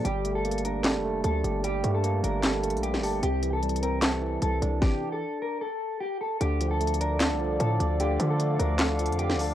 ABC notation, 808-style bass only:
X:1
M:4/4
L:1/16
Q:1/4=151
K:Dm
V:1 name="808-style bass" clef=bass
G,,,8- G,,, F,,,3 D,,2 G,,,2- | G,,,2 G,,4 G,,,4- G,,, B,,,2- B,,,/2 G,,,2- G,,,/2 | C,,12 C,,2 C,,2 | z16 |
D,,8- D,, C,,3 A,,2 D,,2- | D,,2 D,4 D,,4- D,, F,,2- F,,/2 D,,2- D,,/2 |]